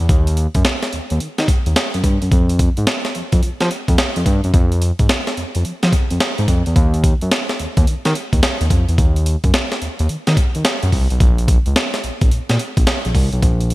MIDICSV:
0, 0, Header, 1, 3, 480
1, 0, Start_track
1, 0, Tempo, 555556
1, 80, Time_signature, 4, 2, 24, 8
1, 11874, End_track
2, 0, Start_track
2, 0, Title_t, "Analog synth bass"
2, 0, Program_c, 0, 38
2, 0, Note_on_c, 0, 40, 86
2, 69, Note_off_c, 0, 40, 0
2, 81, Note_on_c, 0, 39, 106
2, 408, Note_off_c, 0, 39, 0
2, 476, Note_on_c, 0, 42, 88
2, 546, Note_off_c, 0, 42, 0
2, 805, Note_on_c, 0, 39, 45
2, 866, Note_off_c, 0, 39, 0
2, 959, Note_on_c, 0, 39, 90
2, 1028, Note_off_c, 0, 39, 0
2, 1045, Note_on_c, 0, 51, 50
2, 1106, Note_off_c, 0, 51, 0
2, 1200, Note_on_c, 0, 51, 98
2, 1269, Note_off_c, 0, 51, 0
2, 1438, Note_on_c, 0, 39, 92
2, 1507, Note_off_c, 0, 39, 0
2, 1679, Note_on_c, 0, 42, 85
2, 1748, Note_off_c, 0, 42, 0
2, 1762, Note_on_c, 0, 43, 96
2, 1889, Note_off_c, 0, 43, 0
2, 1920, Note_on_c, 0, 42, 80
2, 1988, Note_off_c, 0, 42, 0
2, 2003, Note_on_c, 0, 41, 113
2, 2329, Note_off_c, 0, 41, 0
2, 2399, Note_on_c, 0, 44, 92
2, 2468, Note_off_c, 0, 44, 0
2, 2726, Note_on_c, 0, 41, 50
2, 2787, Note_off_c, 0, 41, 0
2, 2875, Note_on_c, 0, 41, 86
2, 2946, Note_off_c, 0, 41, 0
2, 2964, Note_on_c, 0, 53, 51
2, 3025, Note_off_c, 0, 53, 0
2, 3119, Note_on_c, 0, 53, 103
2, 3188, Note_off_c, 0, 53, 0
2, 3356, Note_on_c, 0, 41, 90
2, 3426, Note_off_c, 0, 41, 0
2, 3597, Note_on_c, 0, 41, 82
2, 3667, Note_off_c, 0, 41, 0
2, 3682, Note_on_c, 0, 43, 97
2, 3809, Note_off_c, 0, 43, 0
2, 3837, Note_on_c, 0, 42, 84
2, 3907, Note_off_c, 0, 42, 0
2, 3922, Note_on_c, 0, 41, 109
2, 4248, Note_off_c, 0, 41, 0
2, 4316, Note_on_c, 0, 44, 91
2, 4386, Note_off_c, 0, 44, 0
2, 4643, Note_on_c, 0, 41, 47
2, 4704, Note_off_c, 0, 41, 0
2, 4800, Note_on_c, 0, 41, 83
2, 4868, Note_off_c, 0, 41, 0
2, 4885, Note_on_c, 0, 53, 46
2, 4946, Note_off_c, 0, 53, 0
2, 5039, Note_on_c, 0, 53, 94
2, 5108, Note_off_c, 0, 53, 0
2, 5279, Note_on_c, 0, 41, 83
2, 5348, Note_off_c, 0, 41, 0
2, 5519, Note_on_c, 0, 44, 91
2, 5588, Note_off_c, 0, 44, 0
2, 5600, Note_on_c, 0, 41, 95
2, 5728, Note_off_c, 0, 41, 0
2, 5760, Note_on_c, 0, 40, 82
2, 5829, Note_off_c, 0, 40, 0
2, 5841, Note_on_c, 0, 39, 113
2, 6168, Note_off_c, 0, 39, 0
2, 6239, Note_on_c, 0, 42, 83
2, 6308, Note_off_c, 0, 42, 0
2, 6565, Note_on_c, 0, 39, 51
2, 6626, Note_off_c, 0, 39, 0
2, 6716, Note_on_c, 0, 39, 87
2, 6786, Note_off_c, 0, 39, 0
2, 6803, Note_on_c, 0, 51, 49
2, 6864, Note_off_c, 0, 51, 0
2, 6959, Note_on_c, 0, 51, 101
2, 7028, Note_off_c, 0, 51, 0
2, 7196, Note_on_c, 0, 39, 94
2, 7266, Note_off_c, 0, 39, 0
2, 7437, Note_on_c, 0, 39, 88
2, 7507, Note_off_c, 0, 39, 0
2, 7521, Note_on_c, 0, 41, 98
2, 7649, Note_off_c, 0, 41, 0
2, 7678, Note_on_c, 0, 40, 92
2, 7747, Note_off_c, 0, 40, 0
2, 7763, Note_on_c, 0, 39, 114
2, 8089, Note_off_c, 0, 39, 0
2, 8157, Note_on_c, 0, 42, 84
2, 8226, Note_off_c, 0, 42, 0
2, 8482, Note_on_c, 0, 39, 44
2, 8544, Note_off_c, 0, 39, 0
2, 8639, Note_on_c, 0, 39, 98
2, 8708, Note_off_c, 0, 39, 0
2, 8723, Note_on_c, 0, 51, 53
2, 8784, Note_off_c, 0, 51, 0
2, 8877, Note_on_c, 0, 51, 100
2, 8947, Note_off_c, 0, 51, 0
2, 9119, Note_on_c, 0, 39, 83
2, 9188, Note_off_c, 0, 39, 0
2, 9358, Note_on_c, 0, 42, 85
2, 9428, Note_off_c, 0, 42, 0
2, 9440, Note_on_c, 0, 36, 98
2, 9568, Note_off_c, 0, 36, 0
2, 9598, Note_on_c, 0, 35, 87
2, 9667, Note_off_c, 0, 35, 0
2, 9682, Note_on_c, 0, 34, 119
2, 10008, Note_off_c, 0, 34, 0
2, 10078, Note_on_c, 0, 37, 87
2, 10147, Note_off_c, 0, 37, 0
2, 10401, Note_on_c, 0, 34, 48
2, 10463, Note_off_c, 0, 34, 0
2, 10556, Note_on_c, 0, 34, 92
2, 10626, Note_off_c, 0, 34, 0
2, 10642, Note_on_c, 0, 46, 51
2, 10704, Note_off_c, 0, 46, 0
2, 10797, Note_on_c, 0, 46, 100
2, 10867, Note_off_c, 0, 46, 0
2, 11035, Note_on_c, 0, 34, 95
2, 11106, Note_off_c, 0, 34, 0
2, 11278, Note_on_c, 0, 34, 84
2, 11347, Note_off_c, 0, 34, 0
2, 11360, Note_on_c, 0, 36, 107
2, 11488, Note_off_c, 0, 36, 0
2, 11518, Note_on_c, 0, 35, 95
2, 11588, Note_off_c, 0, 35, 0
2, 11601, Note_on_c, 0, 34, 108
2, 11874, Note_off_c, 0, 34, 0
2, 11874, End_track
3, 0, Start_track
3, 0, Title_t, "Drums"
3, 79, Note_on_c, 9, 36, 127
3, 79, Note_on_c, 9, 42, 66
3, 165, Note_off_c, 9, 42, 0
3, 166, Note_off_c, 9, 36, 0
3, 234, Note_on_c, 9, 42, 57
3, 319, Note_off_c, 9, 42, 0
3, 319, Note_on_c, 9, 42, 75
3, 405, Note_off_c, 9, 42, 0
3, 471, Note_on_c, 9, 42, 50
3, 474, Note_on_c, 9, 36, 86
3, 558, Note_off_c, 9, 42, 0
3, 559, Note_on_c, 9, 38, 103
3, 560, Note_on_c, 9, 42, 65
3, 561, Note_off_c, 9, 36, 0
3, 646, Note_off_c, 9, 38, 0
3, 647, Note_off_c, 9, 42, 0
3, 713, Note_on_c, 9, 38, 56
3, 713, Note_on_c, 9, 42, 50
3, 799, Note_off_c, 9, 42, 0
3, 800, Note_off_c, 9, 38, 0
3, 800, Note_on_c, 9, 42, 62
3, 886, Note_off_c, 9, 42, 0
3, 952, Note_on_c, 9, 42, 53
3, 1038, Note_off_c, 9, 42, 0
3, 1040, Note_on_c, 9, 42, 69
3, 1126, Note_off_c, 9, 42, 0
3, 1194, Note_on_c, 9, 42, 51
3, 1196, Note_on_c, 9, 38, 67
3, 1280, Note_on_c, 9, 36, 99
3, 1281, Note_off_c, 9, 42, 0
3, 1283, Note_off_c, 9, 38, 0
3, 1283, Note_on_c, 9, 42, 70
3, 1366, Note_off_c, 9, 36, 0
3, 1369, Note_off_c, 9, 42, 0
3, 1436, Note_on_c, 9, 42, 52
3, 1521, Note_off_c, 9, 42, 0
3, 1521, Note_on_c, 9, 42, 71
3, 1522, Note_on_c, 9, 38, 105
3, 1607, Note_off_c, 9, 42, 0
3, 1609, Note_off_c, 9, 38, 0
3, 1676, Note_on_c, 9, 42, 55
3, 1760, Note_on_c, 9, 36, 85
3, 1761, Note_off_c, 9, 42, 0
3, 1761, Note_on_c, 9, 42, 79
3, 1846, Note_off_c, 9, 36, 0
3, 1847, Note_off_c, 9, 42, 0
3, 1916, Note_on_c, 9, 42, 47
3, 2001, Note_on_c, 9, 36, 119
3, 2002, Note_off_c, 9, 42, 0
3, 2002, Note_on_c, 9, 42, 65
3, 2087, Note_off_c, 9, 36, 0
3, 2088, Note_off_c, 9, 42, 0
3, 2155, Note_on_c, 9, 42, 55
3, 2240, Note_off_c, 9, 42, 0
3, 2240, Note_on_c, 9, 36, 100
3, 2240, Note_on_c, 9, 42, 81
3, 2326, Note_off_c, 9, 42, 0
3, 2327, Note_off_c, 9, 36, 0
3, 2393, Note_on_c, 9, 42, 54
3, 2479, Note_off_c, 9, 42, 0
3, 2479, Note_on_c, 9, 38, 113
3, 2480, Note_on_c, 9, 42, 62
3, 2566, Note_off_c, 9, 38, 0
3, 2567, Note_off_c, 9, 42, 0
3, 2633, Note_on_c, 9, 42, 49
3, 2634, Note_on_c, 9, 38, 58
3, 2719, Note_off_c, 9, 42, 0
3, 2720, Note_off_c, 9, 38, 0
3, 2720, Note_on_c, 9, 42, 59
3, 2806, Note_off_c, 9, 42, 0
3, 2871, Note_on_c, 9, 42, 58
3, 2874, Note_on_c, 9, 36, 103
3, 2957, Note_off_c, 9, 42, 0
3, 2960, Note_off_c, 9, 36, 0
3, 2960, Note_on_c, 9, 42, 67
3, 3046, Note_off_c, 9, 42, 0
3, 3114, Note_on_c, 9, 42, 51
3, 3116, Note_on_c, 9, 38, 69
3, 3200, Note_off_c, 9, 42, 0
3, 3202, Note_off_c, 9, 38, 0
3, 3203, Note_on_c, 9, 42, 68
3, 3289, Note_off_c, 9, 42, 0
3, 3355, Note_on_c, 9, 36, 93
3, 3355, Note_on_c, 9, 42, 52
3, 3440, Note_off_c, 9, 42, 0
3, 3440, Note_on_c, 9, 42, 70
3, 3441, Note_off_c, 9, 36, 0
3, 3441, Note_on_c, 9, 38, 108
3, 3526, Note_off_c, 9, 42, 0
3, 3527, Note_off_c, 9, 38, 0
3, 3594, Note_on_c, 9, 42, 54
3, 3679, Note_on_c, 9, 36, 86
3, 3680, Note_off_c, 9, 42, 0
3, 3680, Note_on_c, 9, 42, 77
3, 3765, Note_off_c, 9, 36, 0
3, 3766, Note_off_c, 9, 42, 0
3, 3834, Note_on_c, 9, 42, 50
3, 3920, Note_on_c, 9, 36, 123
3, 3921, Note_off_c, 9, 42, 0
3, 3921, Note_on_c, 9, 42, 66
3, 4006, Note_off_c, 9, 36, 0
3, 4007, Note_off_c, 9, 42, 0
3, 4076, Note_on_c, 9, 42, 54
3, 4161, Note_off_c, 9, 42, 0
3, 4161, Note_on_c, 9, 42, 80
3, 4248, Note_off_c, 9, 42, 0
3, 4312, Note_on_c, 9, 42, 53
3, 4315, Note_on_c, 9, 36, 87
3, 4399, Note_off_c, 9, 42, 0
3, 4401, Note_off_c, 9, 36, 0
3, 4401, Note_on_c, 9, 38, 104
3, 4402, Note_on_c, 9, 42, 67
3, 4487, Note_off_c, 9, 38, 0
3, 4488, Note_off_c, 9, 42, 0
3, 4555, Note_on_c, 9, 38, 58
3, 4555, Note_on_c, 9, 42, 52
3, 4641, Note_off_c, 9, 42, 0
3, 4642, Note_off_c, 9, 38, 0
3, 4642, Note_on_c, 9, 42, 58
3, 4729, Note_off_c, 9, 42, 0
3, 4793, Note_on_c, 9, 42, 58
3, 4879, Note_off_c, 9, 42, 0
3, 4880, Note_on_c, 9, 42, 67
3, 4967, Note_off_c, 9, 42, 0
3, 5035, Note_on_c, 9, 42, 55
3, 5036, Note_on_c, 9, 38, 70
3, 5120, Note_on_c, 9, 36, 87
3, 5121, Note_off_c, 9, 42, 0
3, 5121, Note_on_c, 9, 42, 72
3, 5123, Note_off_c, 9, 38, 0
3, 5206, Note_off_c, 9, 36, 0
3, 5208, Note_off_c, 9, 42, 0
3, 5275, Note_on_c, 9, 42, 50
3, 5359, Note_off_c, 9, 42, 0
3, 5359, Note_on_c, 9, 42, 74
3, 5361, Note_on_c, 9, 38, 111
3, 5446, Note_off_c, 9, 42, 0
3, 5447, Note_off_c, 9, 38, 0
3, 5514, Note_on_c, 9, 42, 52
3, 5599, Note_off_c, 9, 42, 0
3, 5599, Note_on_c, 9, 36, 88
3, 5599, Note_on_c, 9, 42, 77
3, 5685, Note_off_c, 9, 36, 0
3, 5685, Note_off_c, 9, 42, 0
3, 5754, Note_on_c, 9, 42, 46
3, 5839, Note_on_c, 9, 36, 120
3, 5840, Note_off_c, 9, 42, 0
3, 5840, Note_on_c, 9, 42, 69
3, 5926, Note_off_c, 9, 36, 0
3, 5926, Note_off_c, 9, 42, 0
3, 5994, Note_on_c, 9, 42, 55
3, 6080, Note_off_c, 9, 42, 0
3, 6080, Note_on_c, 9, 36, 104
3, 6080, Note_on_c, 9, 42, 76
3, 6166, Note_off_c, 9, 36, 0
3, 6166, Note_off_c, 9, 42, 0
3, 6233, Note_on_c, 9, 42, 51
3, 6319, Note_off_c, 9, 42, 0
3, 6320, Note_on_c, 9, 38, 117
3, 6321, Note_on_c, 9, 42, 66
3, 6407, Note_off_c, 9, 38, 0
3, 6408, Note_off_c, 9, 42, 0
3, 6474, Note_on_c, 9, 42, 47
3, 6475, Note_on_c, 9, 38, 60
3, 6561, Note_off_c, 9, 38, 0
3, 6561, Note_off_c, 9, 42, 0
3, 6562, Note_on_c, 9, 42, 64
3, 6648, Note_off_c, 9, 42, 0
3, 6713, Note_on_c, 9, 42, 58
3, 6714, Note_on_c, 9, 36, 107
3, 6799, Note_off_c, 9, 42, 0
3, 6801, Note_off_c, 9, 36, 0
3, 6802, Note_on_c, 9, 42, 72
3, 6889, Note_off_c, 9, 42, 0
3, 6956, Note_on_c, 9, 42, 56
3, 6958, Note_on_c, 9, 38, 69
3, 7043, Note_off_c, 9, 42, 0
3, 7045, Note_off_c, 9, 38, 0
3, 7045, Note_on_c, 9, 42, 75
3, 7131, Note_off_c, 9, 42, 0
3, 7195, Note_on_c, 9, 36, 98
3, 7196, Note_on_c, 9, 42, 53
3, 7281, Note_off_c, 9, 36, 0
3, 7281, Note_off_c, 9, 42, 0
3, 7281, Note_on_c, 9, 42, 77
3, 7282, Note_on_c, 9, 38, 106
3, 7368, Note_off_c, 9, 42, 0
3, 7369, Note_off_c, 9, 38, 0
3, 7437, Note_on_c, 9, 42, 54
3, 7520, Note_on_c, 9, 36, 88
3, 7522, Note_off_c, 9, 42, 0
3, 7522, Note_on_c, 9, 42, 79
3, 7606, Note_off_c, 9, 36, 0
3, 7608, Note_off_c, 9, 42, 0
3, 7677, Note_on_c, 9, 42, 47
3, 7760, Note_on_c, 9, 36, 123
3, 7762, Note_off_c, 9, 42, 0
3, 7762, Note_on_c, 9, 42, 64
3, 7847, Note_off_c, 9, 36, 0
3, 7849, Note_off_c, 9, 42, 0
3, 7917, Note_on_c, 9, 42, 57
3, 8001, Note_off_c, 9, 42, 0
3, 8001, Note_on_c, 9, 42, 83
3, 8088, Note_off_c, 9, 42, 0
3, 8153, Note_on_c, 9, 42, 51
3, 8155, Note_on_c, 9, 36, 88
3, 8240, Note_off_c, 9, 42, 0
3, 8241, Note_on_c, 9, 38, 105
3, 8242, Note_off_c, 9, 36, 0
3, 8242, Note_on_c, 9, 42, 62
3, 8327, Note_off_c, 9, 38, 0
3, 8328, Note_off_c, 9, 42, 0
3, 8395, Note_on_c, 9, 42, 51
3, 8396, Note_on_c, 9, 38, 60
3, 8481, Note_off_c, 9, 42, 0
3, 8481, Note_on_c, 9, 42, 60
3, 8482, Note_off_c, 9, 38, 0
3, 8568, Note_off_c, 9, 42, 0
3, 8633, Note_on_c, 9, 42, 54
3, 8719, Note_off_c, 9, 42, 0
3, 8719, Note_on_c, 9, 42, 66
3, 8806, Note_off_c, 9, 42, 0
3, 8873, Note_on_c, 9, 42, 58
3, 8875, Note_on_c, 9, 38, 71
3, 8959, Note_on_c, 9, 36, 95
3, 8960, Note_off_c, 9, 42, 0
3, 8960, Note_on_c, 9, 42, 71
3, 8961, Note_off_c, 9, 38, 0
3, 9045, Note_off_c, 9, 36, 0
3, 9047, Note_off_c, 9, 42, 0
3, 9113, Note_on_c, 9, 42, 51
3, 9198, Note_off_c, 9, 42, 0
3, 9198, Note_on_c, 9, 42, 75
3, 9199, Note_on_c, 9, 38, 103
3, 9284, Note_off_c, 9, 42, 0
3, 9286, Note_off_c, 9, 38, 0
3, 9353, Note_on_c, 9, 42, 54
3, 9438, Note_on_c, 9, 36, 83
3, 9439, Note_on_c, 9, 46, 72
3, 9440, Note_off_c, 9, 42, 0
3, 9525, Note_off_c, 9, 36, 0
3, 9525, Note_off_c, 9, 46, 0
3, 9594, Note_on_c, 9, 42, 47
3, 9680, Note_off_c, 9, 42, 0
3, 9680, Note_on_c, 9, 36, 127
3, 9681, Note_on_c, 9, 42, 68
3, 9766, Note_off_c, 9, 36, 0
3, 9767, Note_off_c, 9, 42, 0
3, 9835, Note_on_c, 9, 42, 55
3, 9920, Note_off_c, 9, 42, 0
3, 9920, Note_on_c, 9, 36, 108
3, 9920, Note_on_c, 9, 42, 80
3, 10006, Note_off_c, 9, 36, 0
3, 10007, Note_off_c, 9, 42, 0
3, 10072, Note_on_c, 9, 42, 48
3, 10159, Note_off_c, 9, 42, 0
3, 10161, Note_on_c, 9, 38, 122
3, 10161, Note_on_c, 9, 42, 62
3, 10247, Note_off_c, 9, 38, 0
3, 10248, Note_off_c, 9, 42, 0
3, 10314, Note_on_c, 9, 42, 49
3, 10315, Note_on_c, 9, 38, 58
3, 10400, Note_off_c, 9, 42, 0
3, 10400, Note_on_c, 9, 42, 60
3, 10401, Note_off_c, 9, 38, 0
3, 10486, Note_off_c, 9, 42, 0
3, 10552, Note_on_c, 9, 42, 55
3, 10554, Note_on_c, 9, 36, 110
3, 10638, Note_off_c, 9, 42, 0
3, 10640, Note_off_c, 9, 36, 0
3, 10640, Note_on_c, 9, 42, 65
3, 10726, Note_off_c, 9, 42, 0
3, 10794, Note_on_c, 9, 42, 56
3, 10796, Note_on_c, 9, 38, 67
3, 10881, Note_off_c, 9, 42, 0
3, 10881, Note_on_c, 9, 42, 71
3, 10883, Note_off_c, 9, 38, 0
3, 10968, Note_off_c, 9, 42, 0
3, 11034, Note_on_c, 9, 36, 96
3, 11034, Note_on_c, 9, 42, 56
3, 11118, Note_off_c, 9, 42, 0
3, 11118, Note_on_c, 9, 42, 73
3, 11120, Note_off_c, 9, 36, 0
3, 11120, Note_on_c, 9, 38, 109
3, 11205, Note_off_c, 9, 42, 0
3, 11206, Note_off_c, 9, 38, 0
3, 11274, Note_on_c, 9, 42, 51
3, 11358, Note_on_c, 9, 36, 90
3, 11360, Note_off_c, 9, 42, 0
3, 11360, Note_on_c, 9, 46, 71
3, 11445, Note_off_c, 9, 36, 0
3, 11446, Note_off_c, 9, 46, 0
3, 11513, Note_on_c, 9, 42, 46
3, 11599, Note_on_c, 9, 36, 115
3, 11600, Note_off_c, 9, 42, 0
3, 11600, Note_on_c, 9, 42, 65
3, 11686, Note_off_c, 9, 36, 0
3, 11686, Note_off_c, 9, 42, 0
3, 11755, Note_on_c, 9, 42, 55
3, 11839, Note_off_c, 9, 42, 0
3, 11839, Note_on_c, 9, 42, 76
3, 11874, Note_off_c, 9, 42, 0
3, 11874, End_track
0, 0, End_of_file